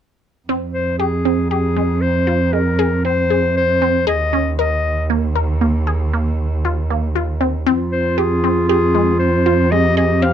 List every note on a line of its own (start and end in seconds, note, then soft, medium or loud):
0.49 4.08 F2 medium
0.49 0.83 C4 medium
0.73 0.97 C5 medium
0.98 1.17 G4 medium
0.98 1.47 G#4 medium
1.25 1.43 C4 medium
1.50 1.68 G4 medium
1.50 2.02 G#4 medium
1.76 2.11 G#3 medium
2.01 2.54 C5 medium
2.27 2.45 F4 medium
2.53 2.71 G#3 medium
2.53 3.04 A#4 medium
2.79 2.96 G#4 medium
3.05 3.22 C4 medium
3.05 3.53 C5 medium
3.30 3.65 G#4 medium
3.57 4.04 C5 medium
3.82 3.99 C4 medium
4.07 7.68 D#2 medium
4.07 4.24 G#4 medium
4.07 4.55 D#5 medium
4.33 4.50 C#4 medium
4.59 4.93 A#4 medium
4.59 5.07 D#5 medium
5.10 5.27 A#3 medium
5.36 5.53 A#4 medium
5.61 5.78 A#3 medium
5.87 6.04 G#4 medium
6.13 6.48 A#3 medium
6.65 6.82 F4 medium
6.90 7.07 A#3 medium
7.15 7.33 F4 medium
7.41 7.58 C4 medium
7.67 10.33 F2 medium
7.67 8.01 C4 medium
7.67 9.73 F4 medium
7.92 8.20 C5 medium
8.18 8.35 G4 medium
8.18 8.68 G#4 medium
8.44 8.61 C4 medium
8.69 8.86 G4 medium
8.69 9.16 G#4 medium
8.95 9.29 G#3 medium
9.19 9.73 C5 medium
9.46 9.63 F4 medium
9.71 9.89 G#3 medium
9.71 10.33 G4 medium
9.71 9.97 D#5 medium
9.97 10.14 G#4 medium
9.97 10.24 D#5 medium
10.22 10.33 C4 medium
10.22 10.33 F5 medium